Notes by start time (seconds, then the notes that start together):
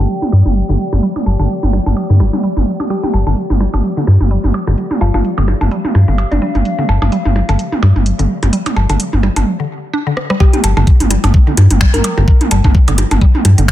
Already playing: G4 D5 G5
0.09 closed hi-hat
0.22 high tom
0.32 G2 G3, percussion blips
0.46 G1, high tom
0.56 closed hi-hat
0.69 G1 D3, closed hi-hat, high tom
0.92 G1, closed hi-hat, high tom, percussion blips
1.03 G3, closed hi-hat
1.16 closed hi-hat, high tom, percussion blips
1.26 G1, percussion blips
1.39 G1 D3, closed hi-hat, high tom, percussion blips
1.50 closed hi-hat
1.63 G1, high tom
1.73 G3, percussion blips
1.86 G1, closed hi-hat, high tom, percussion blips
1.96 closed hi-hat, percussion blips
2.10 G2 D3, closed hi-hat, high tom
2.20 G1 G3, percussion blips
2.33 G3, high tom
2.43 G3, closed hi-hat
2.56 G1, closed hi-hat, high tom
2.80 D4, closed hi-hat, high tom, percussion blips
2.90 G3 G4, closed hi-hat, percussion blips
3.03 G4, high tom
3.14 G1, percussion blips
3.27 G1 D3, high tom, percussion blips
3.37 closed hi-hat
3.50 G1, high tom
3.60 G3, percussion blips
3.74 G1, closed hi-hat, high tom, percussion blips
3.84 closed hi-hat
3.97 D3, high tom
4.07 G2, percussion blips
4.21 G1, high tom
4.31 G3, closed hi-hat
4.44 G1, closed hi-hat, high tom
4.54 percussion blips
4.67 G1 D3, closed hi-hat, high tom, percussion blips
4.78 closed hi-hat
4.91 high tom
5.01 G1 G3 F4, percussion blips
5.14 G1 F4, high tom, percussion blips
5.23 F5, closed hi-hat
5.38 G1 D3, high tom, percussion blips
5.48 percussion blips
5.61 G1, closed hi-hat, high tom, percussion blips
5.71 G3, closed hi-hat
5.85 high tom
5.95 G2, percussion blips
6.08 G1 D3, high tom
6.18 closed hi-hat, percussion blips
6.31 G1 D4, closed hi-hat, high tom
6.42 G3 D4
6.55 G1, closed hi-hat, high tom
6.65 closed hi-hat
6.79 D3, high tom
6.89 G1, percussion blips
7.02 G1, high tom, percussion blips
7.12 G3, closed hi-hat
7.25 G1, high tom
7.36 percussion blips
7.49 G1 D3, closed hi-hat, high tom, percussion blips
7.59 closed hi-hat
7.72 high tom
7.82 G2 G3, percussion blips
7.96 G1, high tom
8.06 closed hi-hat
8.19 G1 D3, closed hi-hat, high tom
8.43 G1, closed hi-hat, high tom, percussion blips
8.53 G3, closed hi-hat
8.66 closed hi-hat, high tom, percussion blips
8.76 G1, percussion blips
8.89 G1 D3, closed hi-hat, high tom, percussion blips
9.00 closed hi-hat
9.13 G1, high tom
9.23 G3, percussion blips
9.36 G1, closed hi-hat, high tom, percussion blips
9.60 D3
9.93 D4
10.07 D3
10.17 cross-stick
10.30 G3, cross-stick
10.40 G3 G4, kick, percussion blips
10.53 G4, closed hi-hat, high tom
10.64 G1, closed hi-hat, percussion blips
10.77 G1 D3, high tom, percussion blips
10.83 G5, kick, closed hi-hat
11.00 G1, closed hi-hat, high tom
11.11 G3, closed hi-hat, percussion blips
11.24 G1, closed hi-hat, high tom, percussion blips
11.34 kick
11.47 D3, high tom
11.57 G2, closed hi-hat, percussion blips
11.71 G1, closed hi-hat, high tom
11.81 G3, finger snap, kick
11.94 G1 A#4, closed hi-hat, high tom
12.04 closed hi-hat, percussion blips
12.17 G1 D3, high tom, percussion blips
12.28 kick
12.41 closed hi-hat, high tom
12.51 G1 G3, closed hi-hat, percussion blips
12.64 G1, kick, high tom, percussion blips
12.75 kick
12.88 G1 D3, closed hi-hat, high tom, percussion blips
12.98 closed hi-hat, percussion blips
13.11 G1, closed hi-hat, high tom, percussion blips
13.21 G3, kick
13.35 high tom
13.45 G2, closed hi-hat, percussion blips
13.58 G1 D3, closed hi-hat, high tom
13.68 finger snap, kick, percussion blips